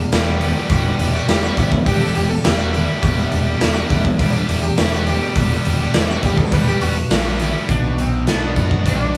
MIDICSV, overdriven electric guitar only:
0, 0, Header, 1, 3, 480
1, 0, Start_track
1, 0, Key_signature, 1, "minor"
1, 0, Tempo, 581959
1, 585, Time_signature, 4, 2, 24, 8
1, 7564, End_track
2, 0, Start_track
2, 0, Title_t, "Overdriven electric guitar"
2, 0, Program_c, 0, 29
2, 0, Note_on_c, 0, 40, 85
2, 102, Note_off_c, 0, 40, 0
2, 105, Note_on_c, 0, 40, 80
2, 110, Note_on_c, 0, 47, 99
2, 113, Note_on_c, 0, 52, 89
2, 116, Note_on_c, 0, 59, 100
2, 117, Note_on_c, 0, 55, 94
2, 121, Note_on_c, 0, 67, 101
2, 340, Note_off_c, 0, 52, 0
2, 343, Note_on_c, 0, 52, 81
2, 345, Note_off_c, 0, 55, 0
2, 348, Note_on_c, 0, 55, 71
2, 351, Note_off_c, 0, 59, 0
2, 354, Note_on_c, 0, 59, 70
2, 357, Note_off_c, 0, 67, 0
2, 361, Note_on_c, 0, 67, 80
2, 463, Note_off_c, 0, 67, 0
2, 466, Note_on_c, 0, 67, 73
2, 471, Note_off_c, 0, 59, 0
2, 474, Note_on_c, 0, 59, 63
2, 477, Note_off_c, 0, 55, 0
2, 480, Note_off_c, 0, 52, 0
2, 480, Note_on_c, 0, 55, 59
2, 483, Note_on_c, 0, 52, 59
2, 581, Note_off_c, 0, 47, 0
2, 584, Note_off_c, 0, 40, 0
2, 587, Note_on_c, 0, 40, 86
2, 591, Note_off_c, 0, 52, 0
2, 591, Note_on_c, 0, 47, 96
2, 592, Note_off_c, 0, 55, 0
2, 594, Note_on_c, 0, 52, 78
2, 595, Note_on_c, 0, 55, 93
2, 597, Note_off_c, 0, 59, 0
2, 599, Note_off_c, 0, 67, 0
2, 601, Note_on_c, 0, 59, 83
2, 603, Note_on_c, 0, 67, 95
2, 936, Note_off_c, 0, 67, 0
2, 939, Note_on_c, 0, 67, 69
2, 944, Note_off_c, 0, 59, 0
2, 946, Note_off_c, 0, 55, 0
2, 948, Note_on_c, 0, 59, 72
2, 949, Note_on_c, 0, 55, 57
2, 956, Note_off_c, 0, 52, 0
2, 960, Note_on_c, 0, 52, 65
2, 1047, Note_off_c, 0, 47, 0
2, 1048, Note_off_c, 0, 40, 0
2, 1052, Note_on_c, 0, 40, 88
2, 1057, Note_off_c, 0, 52, 0
2, 1057, Note_on_c, 0, 47, 98
2, 1059, Note_off_c, 0, 55, 0
2, 1060, Note_on_c, 0, 52, 90
2, 1061, Note_off_c, 0, 59, 0
2, 1062, Note_on_c, 0, 55, 92
2, 1064, Note_on_c, 0, 59, 91
2, 1066, Note_off_c, 0, 67, 0
2, 1069, Note_on_c, 0, 67, 100
2, 1291, Note_off_c, 0, 52, 0
2, 1295, Note_on_c, 0, 52, 72
2, 1300, Note_off_c, 0, 55, 0
2, 1303, Note_on_c, 0, 55, 83
2, 1304, Note_off_c, 0, 59, 0
2, 1307, Note_on_c, 0, 59, 76
2, 1312, Note_off_c, 0, 67, 0
2, 1315, Note_on_c, 0, 67, 73
2, 1418, Note_off_c, 0, 59, 0
2, 1419, Note_off_c, 0, 55, 0
2, 1419, Note_off_c, 0, 67, 0
2, 1428, Note_off_c, 0, 52, 0
2, 1533, Note_on_c, 0, 52, 75
2, 1541, Note_off_c, 0, 47, 0
2, 1542, Note_on_c, 0, 55, 69
2, 1545, Note_on_c, 0, 59, 78
2, 1553, Note_on_c, 0, 67, 78
2, 1652, Note_off_c, 0, 67, 0
2, 1655, Note_on_c, 0, 67, 76
2, 1658, Note_off_c, 0, 59, 0
2, 1661, Note_on_c, 0, 59, 74
2, 1666, Note_off_c, 0, 55, 0
2, 1669, Note_on_c, 0, 55, 64
2, 1670, Note_off_c, 0, 52, 0
2, 1673, Note_on_c, 0, 52, 65
2, 1897, Note_off_c, 0, 67, 0
2, 1898, Note_off_c, 0, 59, 0
2, 1903, Note_off_c, 0, 55, 0
2, 1904, Note_off_c, 0, 52, 0
2, 2011, Note_off_c, 0, 40, 0
2, 2014, Note_on_c, 0, 40, 105
2, 2023, Note_on_c, 0, 47, 85
2, 2023, Note_on_c, 0, 52, 98
2, 2027, Note_on_c, 0, 55, 114
2, 2029, Note_on_c, 0, 59, 98
2, 2034, Note_on_c, 0, 67, 97
2, 2249, Note_off_c, 0, 52, 0
2, 2252, Note_off_c, 0, 55, 0
2, 2252, Note_on_c, 0, 52, 69
2, 2255, Note_on_c, 0, 55, 85
2, 2257, Note_off_c, 0, 59, 0
2, 2260, Note_on_c, 0, 59, 88
2, 2266, Note_off_c, 0, 67, 0
2, 2269, Note_on_c, 0, 67, 82
2, 2367, Note_off_c, 0, 67, 0
2, 2370, Note_on_c, 0, 67, 72
2, 2373, Note_off_c, 0, 59, 0
2, 2376, Note_on_c, 0, 59, 59
2, 2381, Note_off_c, 0, 55, 0
2, 2383, Note_off_c, 0, 52, 0
2, 2384, Note_on_c, 0, 55, 60
2, 2386, Note_on_c, 0, 52, 63
2, 2489, Note_off_c, 0, 47, 0
2, 2492, Note_off_c, 0, 40, 0
2, 2495, Note_on_c, 0, 40, 82
2, 2498, Note_on_c, 0, 47, 93
2, 2501, Note_off_c, 0, 52, 0
2, 2503, Note_off_c, 0, 55, 0
2, 2504, Note_on_c, 0, 52, 87
2, 2506, Note_off_c, 0, 59, 0
2, 2507, Note_on_c, 0, 55, 99
2, 2509, Note_off_c, 0, 67, 0
2, 2510, Note_on_c, 0, 59, 101
2, 2512, Note_on_c, 0, 67, 95
2, 2848, Note_off_c, 0, 67, 0
2, 2851, Note_on_c, 0, 67, 70
2, 2859, Note_off_c, 0, 59, 0
2, 2860, Note_off_c, 0, 55, 0
2, 2862, Note_on_c, 0, 59, 63
2, 2863, Note_on_c, 0, 55, 66
2, 2865, Note_off_c, 0, 52, 0
2, 2868, Note_on_c, 0, 52, 62
2, 2969, Note_off_c, 0, 47, 0
2, 2972, Note_off_c, 0, 40, 0
2, 2975, Note_on_c, 0, 40, 96
2, 2979, Note_off_c, 0, 52, 0
2, 2979, Note_on_c, 0, 47, 84
2, 2982, Note_off_c, 0, 55, 0
2, 2982, Note_on_c, 0, 52, 108
2, 2986, Note_off_c, 0, 59, 0
2, 2986, Note_on_c, 0, 55, 106
2, 2987, Note_off_c, 0, 67, 0
2, 2989, Note_on_c, 0, 59, 92
2, 2990, Note_on_c, 0, 67, 99
2, 3211, Note_off_c, 0, 52, 0
2, 3215, Note_on_c, 0, 52, 85
2, 3218, Note_off_c, 0, 55, 0
2, 3221, Note_off_c, 0, 59, 0
2, 3222, Note_on_c, 0, 55, 78
2, 3224, Note_off_c, 0, 67, 0
2, 3224, Note_on_c, 0, 59, 84
2, 3227, Note_on_c, 0, 67, 81
2, 3320, Note_off_c, 0, 67, 0
2, 3323, Note_off_c, 0, 55, 0
2, 3326, Note_off_c, 0, 52, 0
2, 3328, Note_off_c, 0, 59, 0
2, 3449, Note_on_c, 0, 52, 82
2, 3455, Note_on_c, 0, 55, 76
2, 3460, Note_on_c, 0, 59, 82
2, 3462, Note_off_c, 0, 47, 0
2, 3465, Note_on_c, 0, 67, 88
2, 3558, Note_off_c, 0, 67, 0
2, 3568, Note_on_c, 0, 67, 82
2, 3571, Note_off_c, 0, 59, 0
2, 3572, Note_off_c, 0, 55, 0
2, 3574, Note_on_c, 0, 59, 74
2, 3577, Note_off_c, 0, 52, 0
2, 3581, Note_on_c, 0, 55, 66
2, 3587, Note_on_c, 0, 52, 62
2, 3806, Note_off_c, 0, 67, 0
2, 3811, Note_off_c, 0, 55, 0
2, 3813, Note_off_c, 0, 52, 0
2, 3815, Note_off_c, 0, 59, 0
2, 3935, Note_off_c, 0, 40, 0
2, 3938, Note_on_c, 0, 40, 95
2, 3939, Note_on_c, 0, 47, 97
2, 3946, Note_on_c, 0, 52, 100
2, 3947, Note_on_c, 0, 59, 120
2, 3948, Note_on_c, 0, 55, 102
2, 3953, Note_on_c, 0, 67, 114
2, 4166, Note_off_c, 0, 52, 0
2, 4169, Note_off_c, 0, 55, 0
2, 4176, Note_on_c, 0, 52, 78
2, 4179, Note_on_c, 0, 55, 75
2, 4180, Note_off_c, 0, 59, 0
2, 4181, Note_off_c, 0, 67, 0
2, 4184, Note_on_c, 0, 59, 77
2, 4191, Note_on_c, 0, 67, 79
2, 4289, Note_off_c, 0, 67, 0
2, 4294, Note_off_c, 0, 59, 0
2, 4298, Note_off_c, 0, 55, 0
2, 4299, Note_on_c, 0, 67, 81
2, 4304, Note_on_c, 0, 59, 70
2, 4305, Note_off_c, 0, 52, 0
2, 4308, Note_on_c, 0, 55, 62
2, 4315, Note_on_c, 0, 52, 56
2, 4402, Note_off_c, 0, 40, 0
2, 4405, Note_off_c, 0, 47, 0
2, 4407, Note_off_c, 0, 52, 0
2, 4410, Note_off_c, 0, 55, 0
2, 4411, Note_on_c, 0, 40, 82
2, 4414, Note_off_c, 0, 67, 0
2, 4415, Note_on_c, 0, 47, 79
2, 4416, Note_off_c, 0, 59, 0
2, 4417, Note_on_c, 0, 52, 91
2, 4420, Note_on_c, 0, 55, 96
2, 4424, Note_on_c, 0, 67, 102
2, 4426, Note_on_c, 0, 59, 87
2, 4767, Note_off_c, 0, 67, 0
2, 4774, Note_off_c, 0, 55, 0
2, 4774, Note_off_c, 0, 59, 0
2, 4777, Note_on_c, 0, 67, 78
2, 4782, Note_off_c, 0, 52, 0
2, 4784, Note_on_c, 0, 55, 65
2, 4784, Note_on_c, 0, 59, 64
2, 4792, Note_on_c, 0, 52, 59
2, 4881, Note_off_c, 0, 40, 0
2, 4886, Note_off_c, 0, 47, 0
2, 4886, Note_off_c, 0, 52, 0
2, 4891, Note_on_c, 0, 40, 90
2, 4893, Note_off_c, 0, 55, 0
2, 4893, Note_off_c, 0, 59, 0
2, 4896, Note_on_c, 0, 47, 103
2, 4896, Note_on_c, 0, 52, 103
2, 4899, Note_off_c, 0, 67, 0
2, 4903, Note_on_c, 0, 55, 103
2, 4903, Note_on_c, 0, 59, 113
2, 4909, Note_on_c, 0, 67, 99
2, 5128, Note_off_c, 0, 52, 0
2, 5135, Note_off_c, 0, 55, 0
2, 5138, Note_on_c, 0, 52, 80
2, 5141, Note_off_c, 0, 59, 0
2, 5145, Note_on_c, 0, 55, 90
2, 5146, Note_off_c, 0, 67, 0
2, 5151, Note_on_c, 0, 59, 90
2, 5156, Note_on_c, 0, 67, 80
2, 5252, Note_off_c, 0, 67, 0
2, 5256, Note_off_c, 0, 59, 0
2, 5258, Note_off_c, 0, 55, 0
2, 5260, Note_off_c, 0, 52, 0
2, 5378, Note_off_c, 0, 40, 0
2, 5381, Note_off_c, 0, 47, 0
2, 5385, Note_on_c, 0, 52, 74
2, 5389, Note_on_c, 0, 55, 79
2, 5393, Note_on_c, 0, 59, 85
2, 5399, Note_on_c, 0, 67, 79
2, 5500, Note_off_c, 0, 67, 0
2, 5504, Note_off_c, 0, 59, 0
2, 5510, Note_off_c, 0, 55, 0
2, 5510, Note_on_c, 0, 67, 76
2, 5514, Note_on_c, 0, 59, 71
2, 5518, Note_off_c, 0, 52, 0
2, 5520, Note_on_c, 0, 55, 65
2, 5528, Note_on_c, 0, 52, 60
2, 5735, Note_off_c, 0, 59, 0
2, 5737, Note_off_c, 0, 55, 0
2, 5739, Note_off_c, 0, 67, 0
2, 5743, Note_off_c, 0, 52, 0
2, 5860, Note_on_c, 0, 40, 95
2, 5865, Note_on_c, 0, 47, 98
2, 5865, Note_on_c, 0, 52, 103
2, 5868, Note_on_c, 0, 55, 91
2, 5872, Note_on_c, 0, 67, 108
2, 5873, Note_on_c, 0, 59, 95
2, 6092, Note_off_c, 0, 52, 0
2, 6096, Note_off_c, 0, 55, 0
2, 6102, Note_off_c, 0, 59, 0
2, 6102, Note_on_c, 0, 52, 73
2, 6106, Note_on_c, 0, 55, 75
2, 6109, Note_off_c, 0, 67, 0
2, 6112, Note_on_c, 0, 59, 81
2, 6119, Note_on_c, 0, 67, 77
2, 6209, Note_off_c, 0, 67, 0
2, 6213, Note_off_c, 0, 59, 0
2, 6216, Note_off_c, 0, 55, 0
2, 6219, Note_on_c, 0, 67, 70
2, 6223, Note_on_c, 0, 59, 64
2, 6225, Note_off_c, 0, 52, 0
2, 6226, Note_on_c, 0, 55, 64
2, 6235, Note_on_c, 0, 52, 62
2, 6328, Note_off_c, 0, 67, 0
2, 6329, Note_off_c, 0, 40, 0
2, 6330, Note_off_c, 0, 59, 0
2, 6331, Note_off_c, 0, 47, 0
2, 6331, Note_off_c, 0, 55, 0
2, 6336, Note_off_c, 0, 52, 0
2, 6345, Note_on_c, 0, 47, 59
2, 6820, Note_on_c, 0, 62, 59
2, 7064, Note_on_c, 0, 66, 73
2, 7297, Note_off_c, 0, 62, 0
2, 7307, Note_on_c, 0, 62, 65
2, 7539, Note_off_c, 0, 66, 0
2, 7547, Note_off_c, 0, 47, 0
2, 7564, Note_off_c, 0, 62, 0
2, 7564, End_track
3, 0, Start_track
3, 0, Title_t, "Muted overdriven electric guitar strokes"
3, 1422, Note_on_c, 9, 29, 54
3, 1504, Note_off_c, 9, 29, 0
3, 1900, Note_on_c, 9, 29, 58
3, 1982, Note_off_c, 9, 29, 0
3, 3330, Note_on_c, 9, 29, 61
3, 3412, Note_off_c, 9, 29, 0
3, 3816, Note_on_c, 9, 29, 51
3, 3899, Note_off_c, 9, 29, 0
3, 5261, Note_on_c, 9, 29, 62
3, 5344, Note_off_c, 9, 29, 0
3, 5745, Note_on_c, 9, 29, 54
3, 5827, Note_off_c, 9, 29, 0
3, 7564, End_track
0, 0, End_of_file